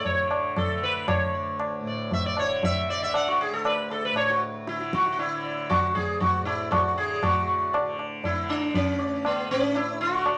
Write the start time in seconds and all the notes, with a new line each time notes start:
Already playing: D2 A2 D3
0.05 D3 C#5, tabla tin, tabla ge
0.31 tabla na
0.57 A4, tabla na, tabla ge
0.65 D3
0.83 B4
1.08 C#5, tabla na, tabla ge
1.22 D2
1.35 D5
1.60 tabla na
1.80 A2
1.87 D5
2.11 E5, tabla tin, tabla ge
2.26 D5
2.37 D3 C#5, tabla na
2.63 E5, tabla tin, tabla ge
2.90 D3 D5
3.03 E5
3.14 F#5, tabla na
3.28 F#4
3.41 G#4
3.51 D2 A4
3.65 B4, tabla na
3.91 A4, tabla na
4.05 B4
4.10 A2
4.16 C#5, tabla na
4.29 F#4
4.67 D3 E4, tabla te
4.80 tabla te
4.93 F#4, tabla ke
5.06 tabla te
5.12 F#4
5.18 E4 D5, tabla tin
5.25 D3
5.44 D5
5.69 F#4, tabla na, tabla ge
5.81 D2
5.95 G#4 D5, tabla ge
6.20 F#4 D5, tabla tin, tabla ge
6.37 A2
6.45 E4 D5, tabla na
6.71 F#4 D5, tabla na, tabla ge
6.93 D3
6.98 G#4 D5
7.22 A2 F#4, tabla na, tabla ge
7.49 D5
7.73 D5, tabla na
7.78 D3
7.99 tabla na
8.24 E4, tabla tin, tabla ge
8.35 D3
8.50 D4, tabla na
8.74 C#4, tabla tin, tabla ge
8.90 D2
9.01 D5
9.25 B3, tabla na
9.48 A2 C#4
9.75 E4, tabla na
10.01 D3 F#4
10.25 D5, tabla na